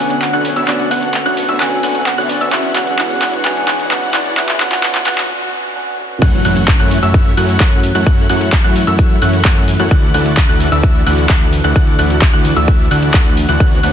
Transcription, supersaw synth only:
0.00 B3 D4 F#4 C#5 F#5
0.33 B3 D4 F#4 C#5 F#5
0.56 B3 D4 F#4 C#5 E5
0.68 B3 D4 F#4 C#5 F#5
0.91 B3 D4 F#4 C#5 F#5
1.26 B3 D4 F#4 C#5 F#5
1.49 B3 D4 F#4 C#5 E5
1.60 B3 D4 F#4 C#5 F#5
1.83 B3 D4 F#4 C#5 F#5
2.18 B3 D4 F#4 C#5 F#5
2.41 B3 D4 F#4 C#5 E5
2.53 B3 D4 F#4 C#5 F#5
2.76 B3 D4 F#4 C#5 F#5
2.99 B3 D4 F#4 C#5 F#5
3.22 B3 D4 F#4 C#5 F#5
3.45 B3 D4 F#4 C#5 F#5
3.68 B3 D4 F#4 C#5 F#5
3.91 B3 D4 F#4 C#5 F#5
4.14 B3 D4 F#4 C#5 F#5
4.37 B3 D4 F#4 C#5 F#5
4.60 B3 D4 F#4 C#5 F#5
4.83 B3 D4 F#4 C#5 F#5
5.07 B3 D4 F#4 C#5 F#5
6.22 A3 E4 F#4 C#5 F#5
6.45 A3 E4 F#4 C#5 F#5
6.80 A3 E4 F#4 C#5 F#5
7.03 A3 E4 F#4 C#5 E5
7.37 A3 E4 F#4 C#5 F#5
7.60 A3 E4 F#4 C#5 F#5
7.95 A3 E4 F#4 C#5 F#5
8.07 A3 E4 F#4 C#5 F#5
8.30 A3 E4 F#4 C#5 F#5
8.64 A3 E4 F#4 C#5 F#5
8.87 A3 E4 F#4 C#5 E5
9.22 A3 E4 F#4 C#5 F#5
9.45 A3 E4 F#4 C#5 F#5
9.80 A3 E4 F#4 C#5 F#5
9.91 A3 E4 F#4 D5 F#5
10.14 A3 E4 F#4 D5 F#5
10.49 A3 E4 F#4 D5 F#5
10.72 A3 E4 F#4 D5 E5
11.06 A3 E4 F#4 D5 F#5
11.30 A3 E4 F#4 D5 F#5
11.64 A3 E4 F#4 D5 F#5
11.76 A3 E4 F#4 D5 F#5
11.99 A3 E4 F#4 D5 F#5
12.33 A3 E4 F#4 D5 F#5
12.56 A3 E4 F#4 D5 E5
12.91 A3 E4 F#4 D5 F#5
13.14 A3 E4 F#4 D5 F#5
13.49 A3 E4 F#4 D5 F#5
13.60 B3 D4 F#4 C#5 F#5
13.83 B3 D4 F#4 C#5 F#5

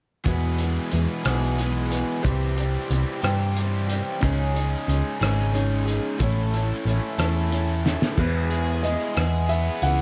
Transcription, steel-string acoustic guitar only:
0.26 E2 B2 E3 G#3 B3 G#4
0.59 E3 G#3 B3 G#4
0.92 E3 G#3 B3 G#4
1.25 E2 B2 E3 G#3 B3 G#4
1.59 E3 G#3 B3 G#4
1.90 E3 G#3 B3 G#4
2.23 C3 E3 G3 C4 G4
2.57 G3 C4 G4
2.89 E3 G3 C4 G4
3.24 C3 E3 G3 C4 G4
3.57 E3 G3 C4 G4
3.88 G3 C4 G4
4.21 C#3 G#3 C#4 D#4 G#4
4.54 C#4 D#4 G#4
4.87 G#3 C#4 D#4 G#4
5.21 C#3 G#3 C#4 D#4 G#4
5.52 G#3 C#4 D#4 G#4
5.85 C#4 D#4 G#4
6.20 A2 A3 C#4 E4 A4
6.54 C#4 E4 A4
6.86 A3 C#4 E4 A4
7.18 A2 A3 C#4 E4 A4
7.50 A3 C#4 E4 A4
7.84 C#4 E4 A4
8.17 E2 E3 G#3 B3 E4 G#4
8.82 G#3 B3 E4 G#4
9.15 E2 E3 G#3 B3 E4 G#4
9.83 G#3 B3 E4 G#4

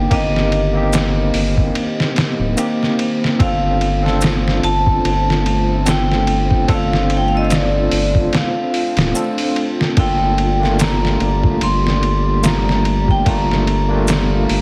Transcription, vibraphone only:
Already playing: G5
0.13 D#5
3.41 F5
4.64 A5
5.89 G5
6.71 F5
7.17 G5
7.28 F5
7.37 D#5
7.44 F5
7.53 D5
8.36 F5
9.99 G5
10.81 A#5
11.63 C6
12.46 A#5
13.11 G5
13.28 A#5

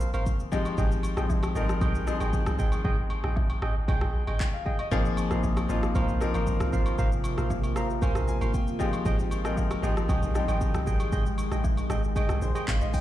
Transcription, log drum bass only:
Already playing: A#1
0.14 G#1
0.78 G#1
1.17 A#1
1.56 G#1
1.81 C2
1.95 A#1
2.21 G#1
2.47 C2
2.59 G#1
2.85 G#1
3.24 A#1
3.62 G#1
3.88 C2
4.01 A#1
4.28 G#1
4.92 G#1
5.31 A#1
5.70 G#1
5.95 C2
6.09 A#1
6.35 G#1
6.61 C2
6.73 G#1
6.99 G#1
7.38 A#1
7.76 G#1
8.02 C2
8.16 A#1
8.42 G#1
9.05 G#1
9.45 A#1
9.83 G#1
10.09 C2
10.23 A#1
10.48 G#1
10.74 C2
10.87 G#1
11.12 G#1
11.52 A#1
11.90 G#1
12.30 C2
12.42 A#1
12.68 G#1
12.81 A#1

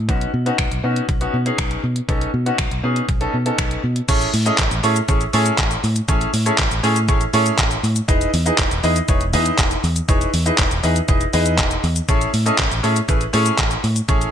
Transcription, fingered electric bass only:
Already playing: A2
0.09 B1
0.34 B2
0.59 B1
0.71 B1
0.84 B2
1.09 B1
1.34 B2
1.59 B1
1.84 B2
2.09 B1
2.34 B2
2.59 B1
2.71 B1
2.84 B2
3.09 B1
3.34 B2
3.59 B1
3.84 B2
4.09 A1
4.34 A2
4.59 A1
4.71 A1
4.84 A2
5.09 A1
5.34 A2
5.59 A1
5.84 A2
6.09 A1
6.34 A2
6.59 A1
6.71 A1
6.83 A2
7.09 A1
7.34 A2
7.59 A1
7.83 A2
8.09 E1
8.34 E2
8.59 E1
8.71 E1
8.84 E2
9.09 E1
9.34 E2
9.59 E1
9.84 E2
10.09 E1
10.34 E2
10.59 E1
10.71 E1
10.84 E2
11.09 E1
11.34 E2
11.59 E1
11.84 E2
12.09 A1
12.34 A2
12.59 A1
12.71 A1
12.84 A2
13.09 A1
13.34 A2
13.59 A1
13.84 A2
14.09 A1

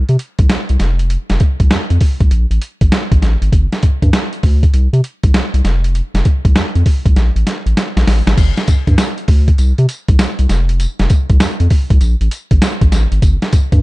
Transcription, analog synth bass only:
0.09 C3
0.39 C2
0.70 C2
0.80 F1
1.30 F1
1.60 C2
1.71 F2
1.90 F2
2.21 C2
2.31 A#1
2.51 A1
2.81 A1
3.12 A#1
3.22 A1
3.42 G#1
3.52 G1
3.83 G2
4.02 G2
4.44 D2
4.74 C2
4.93 C3
5.24 C2
5.34 C2
5.54 C2
5.65 F1
6.14 F1
6.45 C2
6.75 F2
7.06 C2
7.16 A#1
7.36 A1
7.66 A1
7.97 A#1
8.07 A1
8.27 G#1
8.38 G1
8.68 G2
8.87 G2
9.28 D2
9.59 C2
9.79 C3
10.09 C2
10.19 C2
10.39 C2
10.50 F1
11.00 F1
11.30 C2
11.60 F2
11.90 C2
12.01 A#1
12.21 A1
12.51 A1
12.81 A#1
12.92 A1
13.12 G#1
13.22 G1
13.53 G2
13.72 G2

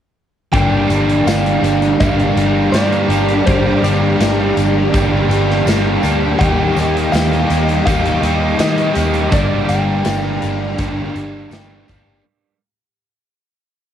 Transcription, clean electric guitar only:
0.53 G5
1.27 F5
2.00 F5
2.72 D5
3.46 C5
3.84 D5
6.39 G5
7.12 F5
7.86 F5
8.61 D#5
9.34 D5
9.69 G5
10.65 F5

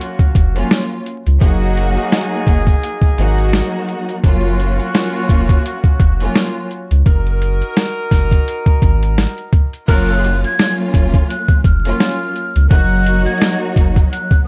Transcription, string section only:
Already playing: F#3 A#3 C#4 F4
0.55 F#3 A#3 C#4 F4
1.40 F#3 A#3 D#4 F#4
3.17 F#3 A#3 D#4 F#4
4.23 F#3 A#3 C#4 F4
4.92 F#3 A#3 C#4 F4
6.20 F#3 A#3 C#4 F4
9.88 F#3 A#3 C#4 F4
10.57 F#3 A#3 C#4 F4
11.85 F#3 A#3 C#4 F4
12.69 F#3 A#3 D#4 F#4

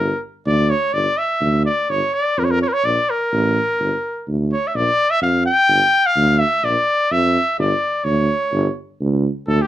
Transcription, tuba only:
Already playing: G1
0.46 D2
0.93 G1
1.41 D2
1.89 G1
2.37 F2
2.84 A#1
3.32 A1
3.80 G1
4.28 D2
4.75 A#1
5.22 F2
5.69 G1
6.16 D2
6.63 A#1
7.11 F2
7.58 G1
8.05 D2
8.53 G1
9.01 C#2
9.48 D2

